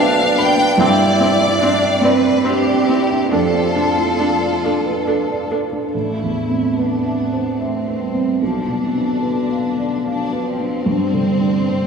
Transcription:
0.00 0.74 B1 medium
0.00 0.57 D4 medium
0.00 0.76 D4 medium
0.00 0.81 E4 medium
0.00 0.37 B4 medium
0.00 0.81 C5 medium
0.00 0.17 D5 medium
0.00 0.37 F5 medium
0.00 0.81 F5 medium
0.00 0.80 G5 loud
0.00 0.81 A5 loud
0.17 0.50 D5 medium
0.37 0.47 D4 medium
0.37 0.70 B4 medium
0.37 0.80 G5 medium
0.37 0.76 B5 medium
0.57 0.78 D4 medium
0.78 3.27 G2 medium
0.78 0.88 C4 medium
0.78 1.62 E4 medium
0.78 2.02 D5 medium
0.78 2.00 G5 loud
0.98 1.32 D5 medium
1.20 1.28 C4 medium
1.20 1.53 D4 medium
1.41 1.62 E4 soft
1.61 1.70 C4 medium
1.61 2.04 D4 medium
1.61 1.95 D4 medium
1.82 2.01 D5 medium
2.01 2.36 C4 medium
2.01 2.46 C4 medium
2.01 2.11 C4 medium
2.01 2.45 B4 medium
2.01 2.22 D5 medium
2.24 2.45 D5 soft
2.44 2.52 C4 medium
2.44 2.89 D4 medium
2.44 3.32 G4 medium
2.44 2.79 C5 medium
2.65 3.00 D5 medium
2.86 2.97 C4 medium
2.86 3.32 E4 medium
2.86 3.22 C5 soft
3.10 3.32 D4 soft
3.31 5.90 F2 medium
3.31 3.39 D4 medium
3.31 5.50 F4 medium
3.31 5.47 A4 medium
3.31 3.53 D5 medium
3.54 3.89 D5 soft
3.75 3.83 D4 soft
3.75 4.11 D4 soft
3.98 4.20 E4 soft
4.19 4.27 D4 medium
4.19 4.55 D4 medium
4.41 4.76 D5 soft
4.64 4.73 D4 soft
4.64 4.99 A4 soft
4.86 5.07 B4 soft
5.07 5.15 D4 medium
5.07 5.42 A4 soft
5.30 5.64 D5 soft
5.51 5.59 D4 soft
5.51 5.85 A4 soft
5.72 5.93 D4 soft
5.93 8.38 A1 soft
5.93 6.78 A3 soft
5.93 6.73 E4 soft
6.23 6.67 E2 soft
6.49 6.93 C4 soft
6.76 7.17 B3 soft
6.76 7.59 D4 soft
6.76 7.22 B4 soft
7.05 7.49 E5 soft
7.17 7.59 B3 soft
7.33 7.76 C5 soft
7.58 8.01 A3 soft
7.58 8.42 C4 soft
7.58 8.04 E5 soft
7.87 8.31 B4 soft
8.00 8.39 G3 soft
8.14 8.41 C4 soft
8.40 10.83 B1 soft
8.40 8.81 F3 soft
8.40 10.03 D4 soft
8.67 9.12 B2 soft
8.83 9.24 E3 soft
8.95 9.40 D4 soft
9.22 10.05 D3 soft
9.22 9.67 B4 soft
9.50 9.94 F5 soft
9.78 10.22 D5 soft
10.03 10.87 F3 soft
10.03 10.46 D4 soft
10.03 10.49 F5 soft
10.32 10.76 B4 soft
10.47 11.87 C4 soft
10.59 10.87 D4 soft
10.85 11.87 G2 soft
10.85 11.70 G3 soft
11.14 11.58 D3 soft
11.41 11.85 D4 soft
11.67 11.87 C4 medium
11.67 11.87 C5 soft

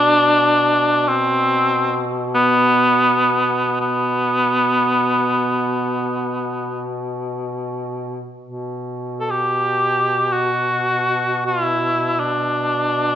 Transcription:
0.00 8.26 B2 soft
0.00 1.10 D4 loud
1.08 2.03 C4 loud
2.34 3.78 B3 loud
3.81 6.91 B3 medium
8.43 13.15 B2 soft
9.20 9.32 A4 medium
9.31 10.34 G4 medium
10.33 11.45 F#4 medium
11.46 11.64 F4 medium
11.64 12.21 E4 medium
12.20 13.15 D4 medium

